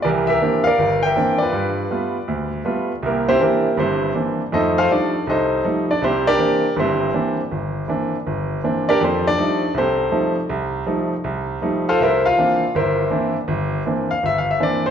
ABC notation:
X:1
M:4/4
L:1/8
Q:"Swing" 1/4=161
K:Cmix
V:1 name="Grand piano"
[GBd] [GBe]2 [Bdf]2 [Beg]2 [F=Bd]- | [F=Bd]4- [FBd] z3 | [B,EGB] [CEGc] [B,EGB]2 [CEGc]2 z2 | [_EAc_e] [FAcf] [Dd]2 [EAce]2 z [Dd] |
[CEGc] [DGBd]3 [CEGc]3 z | z6 z [DGBd] | [CGAc] [Dd]3 [CGAc]3 z | z6 z [FAcf] |
[EBce] [Ff]3 [EBce]3 z | z3 f (3e f e d c |]
V:2 name="Grand piano"
[C,,E,]2 [E,B,CD] z G,,,2 [E,B,CD] z | G,,2 [G,A,=B,F] z D,,2 [G,A,B,F] z | C,,2 [E,B,CD] z [G,,,G,,]2 [E,B,CD] z | [F,,A,]2 [F,G,A,_E] z C,,2 [F,G,A,E] z |
C,,2 [E,B,CD] z [G,,,G,,]2 [E,B,CD] z | G,,,2 [E,B,CD] z G,,,2 [E,B,CD] z | F,,2 [F,G,A,_E] z C,,2 [F,G,A,E] z | C,,2 [F,G,A,_E] z C,,2 [F,G,A,E] z |
C,,2 [E,B,CD] z G,,,2 [E,B,CD] z | G,,,2 [E,B,CD] z G,,,2 [E,B,CD] z |]